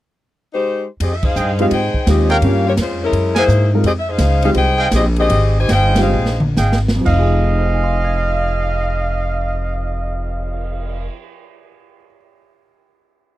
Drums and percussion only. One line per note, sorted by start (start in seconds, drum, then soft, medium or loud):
1.00 ride medium
1.23 kick medium
1.23 crash medium
1.36 hi-hat pedal medium
1.59 ride soft
1.71 ride medium
1.94 kick soft
2.07 snare medium
2.07 hi-hat pedal medium
2.07 ride medium
2.30 ride soft
2.42 ride medium
2.77 snare medium
2.77 hi-hat pedal medium
2.77 ride medium
3.13 ride soft
3.36 snare medium
3.36 ride medium
3.49 hi-hat pedal medium
3.84 ride medium
4.18 snare medium
4.18 hi-hat pedal medium
4.18 ride medium
4.42 ride soft
4.55 ride medium
4.91 snare medium
4.91 hi-hat pedal medium
4.91 ride medium
5.16 ride soft
5.30 ride medium
5.69 snare medium
5.69 hi-hat pedal soft
5.69 ride medium
5.96 snare medium
5.96 ride medium
6.26 snare medium
6.40 mid tom medium
6.57 snare medium
6.57 hi-hat pedal medium
6.72 snare medium
6.88 snare medium
7.06 kick medium
7.06 crash medium
7.38 cymbal swell soft